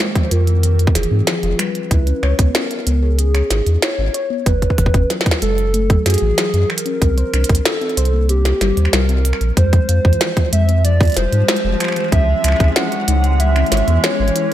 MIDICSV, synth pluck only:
0, 0, Header, 1, 2, 480
1, 0, Start_track
1, 0, Tempo, 638298
1, 1436, Time_signature, 4, 2, 24, 8
1, 10931, End_track
2, 0, Start_track
2, 0, Title_t, "Synth pluck"
2, 0, Program_c, 0, 84
2, 116, Note_on_c, 0, 53, 70
2, 183, Note_off_c, 0, 53, 0
2, 236, Note_on_c, 0, 65, 97
2, 303, Note_off_c, 0, 65, 0
2, 356, Note_on_c, 0, 52, 75
2, 423, Note_off_c, 0, 52, 0
2, 476, Note_on_c, 0, 53, 81
2, 576, Note_off_c, 0, 53, 0
2, 716, Note_on_c, 0, 52, 76
2, 783, Note_off_c, 0, 52, 0
2, 836, Note_on_c, 0, 60, 74
2, 903, Note_off_c, 0, 60, 0
2, 956, Note_on_c, 0, 53, 78
2, 996, Note_off_c, 0, 53, 0
2, 1076, Note_on_c, 0, 65, 74
2, 1176, Note_off_c, 0, 65, 0
2, 1196, Note_on_c, 0, 55, 73
2, 1263, Note_off_c, 0, 55, 0
2, 1436, Note_on_c, 0, 64, 84
2, 1503, Note_off_c, 0, 64, 0
2, 1556, Note_on_c, 0, 61, 73
2, 1623, Note_off_c, 0, 61, 0
2, 1676, Note_on_c, 0, 73, 94
2, 1743, Note_off_c, 0, 73, 0
2, 1795, Note_on_c, 0, 59, 76
2, 1863, Note_off_c, 0, 59, 0
2, 1916, Note_on_c, 0, 61, 75
2, 2016, Note_off_c, 0, 61, 0
2, 2156, Note_on_c, 0, 59, 76
2, 2223, Note_off_c, 0, 59, 0
2, 2275, Note_on_c, 0, 68, 78
2, 2343, Note_off_c, 0, 68, 0
2, 2396, Note_on_c, 0, 61, 81
2, 2436, Note_off_c, 0, 61, 0
2, 2515, Note_on_c, 0, 73, 73
2, 2616, Note_off_c, 0, 73, 0
2, 2636, Note_on_c, 0, 63, 77
2, 2703, Note_off_c, 0, 63, 0
2, 2876, Note_on_c, 0, 64, 77
2, 2943, Note_off_c, 0, 64, 0
2, 2996, Note_on_c, 0, 61, 76
2, 3063, Note_off_c, 0, 61, 0
2, 3116, Note_on_c, 0, 73, 96
2, 3183, Note_off_c, 0, 73, 0
2, 3236, Note_on_c, 0, 59, 74
2, 3303, Note_off_c, 0, 59, 0
2, 3355, Note_on_c, 0, 54, 82
2, 3456, Note_off_c, 0, 54, 0
2, 3596, Note_on_c, 0, 52, 70
2, 3663, Note_off_c, 0, 52, 0
2, 3716, Note_on_c, 0, 61, 73
2, 3783, Note_off_c, 0, 61, 0
2, 3836, Note_on_c, 0, 54, 76
2, 3876, Note_off_c, 0, 54, 0
2, 3956, Note_on_c, 0, 66, 74
2, 4056, Note_off_c, 0, 66, 0
2, 4076, Note_on_c, 0, 56, 72
2, 4143, Note_off_c, 0, 56, 0
2, 4316, Note_on_c, 0, 57, 79
2, 4383, Note_off_c, 0, 57, 0
2, 4436, Note_on_c, 0, 54, 75
2, 4503, Note_off_c, 0, 54, 0
2, 4556, Note_on_c, 0, 66, 100
2, 4623, Note_off_c, 0, 66, 0
2, 4676, Note_on_c, 0, 52, 80
2, 4743, Note_off_c, 0, 52, 0
2, 4796, Note_on_c, 0, 54, 77
2, 4896, Note_off_c, 0, 54, 0
2, 5036, Note_on_c, 0, 52, 70
2, 5103, Note_off_c, 0, 52, 0
2, 5156, Note_on_c, 0, 61, 74
2, 5223, Note_off_c, 0, 61, 0
2, 5276, Note_on_c, 0, 60, 83
2, 5316, Note_off_c, 0, 60, 0
2, 5396, Note_on_c, 0, 72, 73
2, 5497, Note_off_c, 0, 72, 0
2, 5516, Note_on_c, 0, 62, 71
2, 5583, Note_off_c, 0, 62, 0
2, 5756, Note_on_c, 0, 63, 80
2, 5823, Note_off_c, 0, 63, 0
2, 5876, Note_on_c, 0, 60, 76
2, 5943, Note_off_c, 0, 60, 0
2, 5996, Note_on_c, 0, 72, 99
2, 6063, Note_off_c, 0, 72, 0
2, 6116, Note_on_c, 0, 58, 78
2, 6183, Note_off_c, 0, 58, 0
2, 6236, Note_on_c, 0, 60, 79
2, 6336, Note_off_c, 0, 60, 0
2, 6476, Note_on_c, 0, 55, 75
2, 6576, Note_off_c, 0, 55, 0
2, 6596, Note_on_c, 0, 72, 74
2, 6663, Note_off_c, 0, 72, 0
2, 6716, Note_on_c, 0, 55, 79
2, 6816, Note_off_c, 0, 55, 0
2, 6836, Note_on_c, 0, 60, 100
2, 6876, Note_off_c, 0, 60, 0
2, 6956, Note_on_c, 0, 60, 74
2, 6996, Note_off_c, 0, 60, 0
2, 7196, Note_on_c, 0, 56, 84
2, 7263, Note_off_c, 0, 56, 0
2, 7316, Note_on_c, 0, 53, 72
2, 7383, Note_off_c, 0, 53, 0
2, 7436, Note_on_c, 0, 65, 93
2, 7503, Note_off_c, 0, 65, 0
2, 7556, Note_on_c, 0, 52, 73
2, 7623, Note_off_c, 0, 52, 0
2, 7676, Note_on_c, 0, 53, 82
2, 7776, Note_off_c, 0, 53, 0
2, 7916, Note_on_c, 0, 56, 78
2, 7983, Note_off_c, 0, 56, 0
2, 8036, Note_on_c, 0, 60, 77
2, 8103, Note_off_c, 0, 60, 0
2, 8156, Note_on_c, 0, 53, 80
2, 8196, Note_off_c, 0, 53, 0
2, 8276, Note_on_c, 0, 65, 77
2, 8376, Note_off_c, 0, 65, 0
2, 8396, Note_on_c, 0, 55, 76
2, 8463, Note_off_c, 0, 55, 0
2, 8636, Note_on_c, 0, 56, 79
2, 8703, Note_off_c, 0, 56, 0
2, 8756, Note_on_c, 0, 53, 75
2, 8823, Note_off_c, 0, 53, 0
2, 8876, Note_on_c, 0, 65, 99
2, 8943, Note_off_c, 0, 65, 0
2, 8996, Note_on_c, 0, 52, 74
2, 9063, Note_off_c, 0, 52, 0
2, 9116, Note_on_c, 0, 61, 83
2, 9216, Note_off_c, 0, 61, 0
2, 9356, Note_on_c, 0, 64, 67
2, 9423, Note_off_c, 0, 64, 0
2, 9476, Note_on_c, 0, 68, 71
2, 9543, Note_off_c, 0, 68, 0
2, 9596, Note_on_c, 0, 61, 77
2, 9636, Note_off_c, 0, 61, 0
2, 9716, Note_on_c, 0, 73, 73
2, 9817, Note_off_c, 0, 73, 0
2, 9836, Note_on_c, 0, 63, 75
2, 9903, Note_off_c, 0, 63, 0
2, 10076, Note_on_c, 0, 64, 84
2, 10143, Note_off_c, 0, 64, 0
2, 10196, Note_on_c, 0, 61, 75
2, 10263, Note_off_c, 0, 61, 0
2, 10316, Note_on_c, 0, 73, 101
2, 10383, Note_off_c, 0, 73, 0
2, 10436, Note_on_c, 0, 59, 77
2, 10503, Note_off_c, 0, 59, 0
2, 10556, Note_on_c, 0, 61, 81
2, 10656, Note_off_c, 0, 61, 0
2, 10796, Note_on_c, 0, 64, 71
2, 10863, Note_off_c, 0, 64, 0
2, 10931, End_track
0, 0, End_of_file